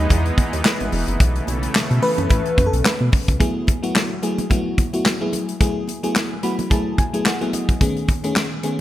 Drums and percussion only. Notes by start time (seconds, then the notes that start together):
0.09 kick, closed hi-hat, muted conga, low conga
0.26 closed hi-hat
0.38 kick, closed hi-hat, high conga
0.53 closed hi-hat
0.65 snare, clap, muted conga, high conga
0.80 closed hi-hat, high conga
0.92 open hi-hat, low conga
1.08 closed hi-hat
1.20 kick, closed hi-hat
1.36 closed hi-hat
1.47 closed hi-hat, high conga
1.63 closed hi-hat
1.75 snare, clap, high conga
1.91 closed hi-hat
2.02 open hi-hat, muted conga
2.18 closed hi-hat, high conga, low conga
2.30 kick, closed hi-hat, muted conga, low conga
2.46 closed hi-hat
2.58 kick, closed hi-hat, high conga
2.73 closed hi-hat
2.85 snare, clap, muted conga, high conga
3.01 high conga
3.12 kick, open hi-hat, low conga
3.28 kick, closed hi-hat
3.40 kick, closed hi-hat
3.67 kick, closed hi-hat, muted conga, high conga
3.84 closed hi-hat
3.95 snare, clap, muted conga, high conga
4.23 closed hi-hat, muted conga
4.38 closed hi-hat, high conga, low conga
4.50 kick, closed hi-hat, muted conga, low conga
4.78 kick, closed hi-hat, high conga
4.94 closed hi-hat
5.05 snare, clap, muted conga, high conga
5.22 high conga
5.33 closed hi-hat, low conga
5.49 closed hi-hat
5.61 kick, closed hi-hat, muted conga
5.88 closed hi-hat, muted conga, high conga
6.04 closed hi-hat
6.16 snare, clap, muted conga, high conga
6.43 closed hi-hat
6.59 closed hi-hat, high conga, low conga
6.70 kick, closed hi-hat, low conga
6.98 kick, closed hi-hat, high conga
7.14 closed hi-hat
7.26 snare, clap, muted conga, high conga
7.41 closed hi-hat, high conga
7.53 closed hi-hat, muted conga, low conga
7.69 kick, closed hi-hat
7.81 kick, closed hi-hat, muted conga
7.97 closed hi-hat
8.08 kick, closed hi-hat, muted conga, high conga
8.24 closed hi-hat
8.36 snare, clap, high conga
8.63 closed hi-hat, muted conga